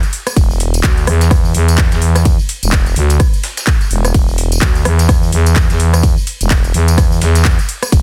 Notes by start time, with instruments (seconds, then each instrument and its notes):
0.03 closed hi-hat, tambourine
0.13 closed hi-hat, open hi-hat
0.27 cross-stick, closed hi-hat, tambourine
0.36 fm bass E1, kick, closed hi-hat, ride, tambourine
0.51 tambourine
0.60 closed hi-hat, open hi-hat
0.74 closed hi-hat, tambourine
0.84 fm bass D2, kick, snare, clap, closed hi-hat, ride, tambourine
0.98 closed hi-hat, tambourine
1.07 fm bass E2, cross-stick, closed hi-hat, open hi-hat
1.21 snare, closed hi-hat, tambourine
1.31 kick, cross-stick, closed hi-hat, open hi-hat, ride, tambourine
1.45 tambourine
1.55 fm bass E2, closed hi-hat, open hi-hat
1.68 closed hi-hat, tambourine
1.78 kick, snare, clap, closed hi-hat, ride
1.92 fm bass E2, snare, closed hi-hat, tambourine
2.02 closed hi-hat, open hi-hat
2.16 cross-stick, snare, closed hi-hat, tambourine
2.25 kick, closed hi-hat, ride, tambourine
2.39 tambourine
2.49 closed hi-hat, open hi-hat
2.63 fm bass E1, closed hi-hat, tambourine
2.73 kick, snare, clap, closed hi-hat, ride
2.86 closed hi-hat, tambourine
2.96 fm bass D2, closed hi-hat, open hi-hat
3.10 closed hi-hat, tambourine
3.20 kick, cross-stick, closed hi-hat, ride, tambourine
3.34 closed hi-hat, tambourine
3.43 snare, closed hi-hat, open hi-hat
3.57 snare, closed hi-hat, tambourine
3.67 kick, snare, clap, closed hi-hat, ride, tambourine
3.81 closed hi-hat, tambourine
3.91 fm bass E1, closed hi-hat, open hi-hat
4.05 cross-stick, closed hi-hat, tambourine
4.14 fm bass E1, kick, closed hi-hat, ride
4.29 tambourine
4.38 closed hi-hat, open hi-hat
4.52 closed hi-hat, tambourine
4.62 fm bass D2, kick, snare, clap, closed hi-hat, ride
4.75 closed hi-hat, tambourine
4.85 fm bass E2, cross-stick, closed hi-hat, open hi-hat
4.99 snare, closed hi-hat, tambourine
5.09 kick, cross-stick, closed hi-hat, open hi-hat, ride, tambourine
5.23 tambourine
5.32 fm bass E2, closed hi-hat, open hi-hat
5.46 closed hi-hat, tambourine
5.56 kick, snare, clap, closed hi-hat, ride, tambourine
5.70 fm bass E2, snare, closed hi-hat, tambourine
5.80 closed hi-hat, open hi-hat
5.94 cross-stick, closed hi-hat, tambourine
6.03 kick, closed hi-hat, ride, tambourine
6.18 tambourine
6.27 closed hi-hat, open hi-hat
6.41 fm bass E1, closed hi-hat, tambourine
6.51 kick, snare, clap, closed hi-hat, ride, tambourine
6.64 closed hi-hat, tambourine
6.74 fm bass E2, closed hi-hat, open hi-hat
6.88 closed hi-hat, tambourine
6.98 kick, cross-stick, closed hi-hat, ride, tambourine
7.12 tambourine
7.21 fm bass E2, snare, closed hi-hat, open hi-hat
7.35 snare, closed hi-hat, tambourine
7.45 kick, snare, clap, closed hi-hat, ride
7.59 closed hi-hat, tambourine
7.69 closed hi-hat, open hi-hat
7.83 cross-stick, closed hi-hat, tambourine
7.92 fm bass E1, kick, closed hi-hat, ride, tambourine